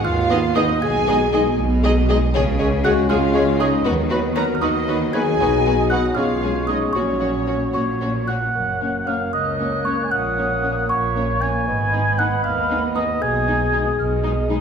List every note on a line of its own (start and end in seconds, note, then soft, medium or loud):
0.03 0.69 D#2 medium
0.03 0.70 D#2 medium
0.03 0.58 F4 loud
0.03 0.55 F5 medium
0.03 0.53 F6 loud
0.29 0.39 B3 medium
0.29 0.38 B3 medium
0.29 0.40 B3 medium
0.29 0.39 D#4 medium
0.29 0.38 D#4 medium
0.29 0.39 G#4 medium
0.29 0.38 D#5 medium
0.29 0.40 D#5 medium
0.55 0.65 B3 medium
0.55 0.64 B3 medium
0.55 0.66 B3 medium
0.55 0.65 D#4 medium
0.55 0.82 D#4 medium
0.55 0.64 D#4 medium
0.55 0.64 G#4 medium
0.55 0.63 D#5 medium
0.55 0.82 D#5 medium
0.55 0.66 D#5 medium
0.55 0.80 D#6 loud
0.82 1.46 B1 medium
0.82 1.46 B2 medium
0.82 1.57 G#4 loud
0.82 1.56 G#5 loud
0.82 1.58 G#5 loud
0.82 1.54 G#6 loud
1.07 1.17 G#3 medium
1.07 1.16 G#3 medium
1.07 1.17 D#4 medium
1.07 1.16 D#4 medium
1.07 1.16 G#4 medium
1.07 1.15 D#5 medium
1.07 1.17 D#5 medium
1.33 1.41 G#3 medium
1.33 1.42 G#3 medium
1.33 1.41 D#4 medium
1.33 1.42 D#4 medium
1.33 1.41 G#4 medium
1.33 1.41 D#5 medium
1.33 1.43 D#5 medium
1.58 2.22 B1 medium
1.58 2.22 B2 loud
1.83 1.92 G#3 medium
1.83 1.93 G#3 medium
1.83 1.92 G#3 medium
1.83 1.93 D#4 medium
1.83 1.92 D#4 medium
1.83 1.92 G#4 medium
1.83 1.91 D#5 medium
1.83 1.94 D#5 medium
2.09 2.18 G#3 medium
2.09 2.17 G#3 medium
2.09 2.18 D#4 medium
2.09 2.17 G#4 medium
2.09 2.17 D#5 medium
2.09 2.19 D#5 medium
2.34 3.01 C#2 loud
2.34 3.01 C#3 loud
2.34 3.82 G#3 medium
2.34 2.43 G#3 medium
2.34 3.82 C#4 medium
2.34 2.42 G#4 medium
2.34 2.43 G#4 medium
2.34 2.42 C#5 medium
2.59 2.68 G#3 medium
2.59 2.67 G#3 medium
2.59 2.67 G#4 medium
2.59 2.67 C#5 medium
2.59 2.69 C#5 medium
2.84 2.93 G#3 medium
2.84 3.08 F#4 loud
2.84 2.92 G#4 medium
2.84 2.93 G#4 medium
2.84 2.92 C#5 medium
2.84 2.94 C#5 medium
2.84 2.92 F#5 loud
2.84 2.91 F#5 medium
2.84 3.08 F#6 loud
3.09 3.76 C#2 medium
3.09 3.76 C#3 medium
3.09 3.18 G#3 medium
3.09 3.61 F4 medium
3.09 3.17 G#4 medium
3.09 3.18 G#4 medium
3.09 3.17 C#5 medium
3.09 3.59 F5 medium
3.09 3.57 F6 medium
3.34 3.44 G#3 medium
3.34 3.43 G#3 medium
3.34 3.42 G#4 medium
3.34 3.43 G#4 medium
3.34 3.42 C#5 medium
3.34 3.44 C#5 medium
3.59 3.69 G#3 medium
3.59 3.68 G#3 medium
3.59 3.85 D#4 medium
3.59 3.67 G#4 medium
3.59 3.68 G#4 medium
3.59 3.68 C#5 medium
3.59 3.69 C#5 medium
3.59 3.85 D#5 medium
3.59 3.66 D#5 medium
3.59 3.84 D#6 medium
3.85 4.53 D#2 medium
3.85 4.53 D#3 medium
3.85 6.13 F#3 medium
3.85 5.40 B3 medium
3.85 3.94 B3 medium
3.85 3.94 D#4 medium
3.85 3.93 F#4 medium
3.85 3.93 B4 medium
4.10 4.20 F#3 medium
4.10 4.19 B3 medium
4.10 4.19 D#4 medium
4.10 4.18 F#4 medium
4.10 4.18 B4 medium
4.10 4.20 B4 medium
4.35 4.46 F#3 medium
4.35 4.44 B3 medium
4.35 4.44 D#4 medium
4.35 4.43 F#4 medium
4.35 4.60 A#4 medium
4.35 4.43 B4 medium
4.35 4.45 B4 medium
4.35 4.42 A#5 medium
4.35 4.44 A#5 medium
4.35 4.53 A#6 loud
4.55 4.62 F6 medium
4.61 5.31 D#2 medium
4.61 5.31 D#3 medium
4.61 4.70 B3 medium
4.61 4.70 D#4 medium
4.61 5.13 D#4 medium
4.61 4.69 F#4 medium
4.61 4.69 B4 medium
4.61 5.13 D#5 medium
4.61 5.10 D#6 medium
4.87 4.98 F#3 medium
4.87 4.96 B3 medium
4.87 4.97 D#4 medium
4.87 4.96 F#4 medium
4.87 4.95 B4 medium
4.87 4.98 B4 medium
5.13 5.24 F#3 medium
5.13 5.23 B3 medium
5.13 5.23 D#4 medium
5.13 5.21 F#4 medium
5.13 5.89 G#4 loud
5.13 5.22 B4 medium
5.13 5.24 B4 medium
5.13 5.89 G#5 loud
5.13 5.90 G#5 loud
5.13 5.87 G#6 loud
5.40 6.07 B1 medium
5.40 6.08 B2 medium
5.40 6.13 F#3 medium
5.40 5.48 B3 medium
5.40 6.15 D#4 medium
5.40 5.48 D#4 medium
5.40 5.48 F#4 medium
5.40 5.48 B4 medium
5.40 6.18 D#5 medium
5.65 5.74 B3 medium
5.65 5.74 D#4 medium
5.65 5.74 F#4 medium
5.65 5.73 B4 medium
5.90 6.00 B3 medium
5.90 5.99 D#4 medium
5.90 5.98 F#4 medium
5.90 6.18 F#4 medium
5.90 5.98 B4 medium
5.90 6.16 F#5 medium
5.90 5.97 F#5 medium
5.90 6.14 F#6 medium
6.15 6.85 B1 medium
6.15 6.86 B2 medium
6.15 6.25 G#3 medium
6.15 6.97 G#3 medium
6.15 6.96 G#3 medium
6.15 6.25 C#4 medium
6.15 8.29 C#4 medium
6.15 6.67 F4 medium
6.15 6.24 G#4 medium
6.15 6.24 C#5 medium
6.15 6.95 C#5 medium
6.15 6.67 F5 medium
6.15 6.68 F5 medium
6.15 6.64 F6 medium
6.42 6.51 G#3 medium
6.42 6.51 C#4 medium
6.42 6.50 G#4 medium
6.42 6.50 C#5 medium
6.67 6.77 G#3 soft
6.67 6.76 C#4 soft
6.67 6.94 D#4 medium
6.67 6.76 G#4 medium
6.67 6.76 C#5 medium
6.67 6.76 D#5 medium
6.67 6.75 D#5 medium
6.67 6.92 D#6 medium
6.93 7.65 A#1 medium
6.93 7.65 A#2 medium
6.93 8.26 F#3 medium
6.93 8.29 F#3 medium
6.93 7.03 A#3 medium
6.93 7.03 C#4 medium
6.93 7.73 C#4 medium
6.93 7.03 F#4 medium
6.93 7.02 C#5 medium
6.93 7.73 C#5 medium
6.93 7.69 C#6 medium
7.20 7.29 A#3 soft
7.20 7.29 C#4 soft
7.20 7.28 F#4 soft
7.20 7.29 C#5 soft
7.47 7.55 A#3 soft
7.47 7.56 C#4 soft
7.47 7.55 F#4 soft
7.47 7.55 C#5 soft
7.73 8.46 A#1 medium
7.73 8.46 A#2 medium
7.73 7.83 A#3 soft
7.73 7.83 C#4 medium
7.73 7.81 F#4 soft
7.73 7.81 C#5 medium
7.73 8.25 C#5 medium
7.73 8.25 C#6 medium
8.01 8.10 A#3 soft
8.01 8.10 C#4 soft
8.01 8.09 F#4 soft
8.01 8.09 C#5 medium
8.28 8.37 A#3 soft
8.28 8.37 C#4 soft
8.28 8.36 F#4 soft
8.28 8.36 C#5 soft
8.28 9.09 F#5 medium
8.28 9.03 F#6 medium
8.55 9.20 F#1 medium
8.55 9.20 F#2 medium
8.55 11.63 A#3 medium
8.55 11.64 C#5 medium
8.81 8.90 A#3 soft
8.81 8.89 A#3 soft
8.81 8.90 C#4 soft
8.81 8.89 C#4 soft
8.81 8.89 C#5 soft
9.07 9.17 A#3 soft
9.07 9.16 A#3 medium
9.07 9.15 C#4 soft
9.07 9.16 C#4 soft
9.07 9.15 C#5 soft
9.07 9.33 F5 medium
9.07 9.31 F6 medium
9.33 9.99 C#2 medium
9.33 9.87 D#5 medium
9.33 9.82 D#6 medium
9.33 10.08 F#6 medium
9.59 9.68 A#3 soft
9.59 9.67 A#3 soft
9.59 9.68 C#4 soft
9.59 9.67 C#4 soft
9.59 9.67 C#5 soft
9.85 9.93 A#3 soft
9.85 9.95 A#3 soft
9.85 9.94 C#4 medium
9.85 9.96 C#4 soft
9.85 10.06 C#5 medium
9.85 9.94 C#5 soft
9.85 10.10 C#6 medium
10.04 10.13 G#5 medium
10.11 10.76 A#1 medium
10.11 10.77 A#2 medium
10.11 10.89 F#5 medium
10.11 10.90 D#6 medium
10.11 10.85 F#6 medium
10.38 10.46 A#3 soft
10.38 10.47 A#3 soft
10.38 10.46 C#4 medium
10.38 10.47 C#4 medium
10.38 10.46 C#5 soft
10.63 10.71 A#3 soft
10.63 10.73 A#3 medium
10.63 10.71 C#4 soft
10.63 10.73 C#4 medium
10.63 10.72 C#5 soft
10.89 11.55 A#1 medium
10.89 11.55 A#2 medium
10.89 11.43 C#5 medium
10.89 11.38 C#6 medium
10.89 11.67 C#6 medium
11.16 11.24 A#3 medium
11.16 11.26 A#3 medium
11.16 11.24 C#4 medium
11.16 11.26 C#4 medium
11.16 11.24 C#5 medium
11.41 11.50 A#3 soft
11.41 11.51 A#3 medium
11.41 11.49 C#4 medium
11.41 11.51 C#4 soft
11.41 11.50 C#5 medium
11.41 12.20 G#5 medium
11.41 12.14 G#6 medium
11.67 12.31 G#1 medium
11.67 12.31 G#2 medium
11.67 13.23 B3 medium
11.67 14.61 D#5 medium
11.67 12.91 B5 medium
11.92 12.01 B3 medium
11.92 12.01 B3 soft
11.92 12.00 D#4 medium
11.92 12.02 D#4 medium
11.92 12.01 G#4 soft
12.18 12.28 B3 medium
12.18 12.27 B3 medium
12.18 12.26 D#4 soft
12.18 12.27 D#4 soft
12.18 12.27 G#4 medium
12.18 12.43 F#5 medium
12.18 12.42 F#6 medium
12.44 13.09 D#2 medium
12.44 12.80 F5 medium
12.44 12.92 F6 medium
12.69 12.79 B3 medium
12.69 12.78 B3 medium
12.69 12.79 D#4 medium
12.69 12.78 D#4 medium
12.69 12.78 G#4 medium
12.95 13.06 B3 medium
12.95 13.04 B3 medium
12.95 13.03 D#4 medium
12.95 13.05 D#4 medium
12.95 13.04 G#4 medium
12.95 13.24 D#5 medium
12.95 13.20 D#6 medium
13.22 13.86 B1 medium
13.22 13.86 B2 medium
13.22 14.61 G#3 medium
13.22 13.99 G#5 medium
13.22 13.97 D#6 medium
13.22 13.94 G#6 medium
13.47 13.56 G#3 medium
13.47 13.57 G#3 medium
13.47 13.55 D#4 medium
13.47 13.57 D#4 medium
13.47 13.57 G#4 medium
13.72 13.81 G#3 medium
13.72 13.83 G#3 medium
13.72 13.80 D#4 medium
13.72 13.83 D#4 medium
13.72 13.82 G#4 medium
13.98 14.61 B1 medium
13.98 14.61 B2 medium
13.98 14.04 F6 medium
14.23 14.31 G#3 medium
14.23 14.33 G#3 medium
14.23 14.31 D#4 medium
14.23 14.33 D#4 medium
14.23 14.32 G#4 medium
14.23 14.30 D#6 medium
14.48 14.58 G#3 medium
14.48 14.56 G#3 medium
14.48 14.57 D#4 medium
14.48 14.58 G#4 medium
14.48 14.55 B5 medium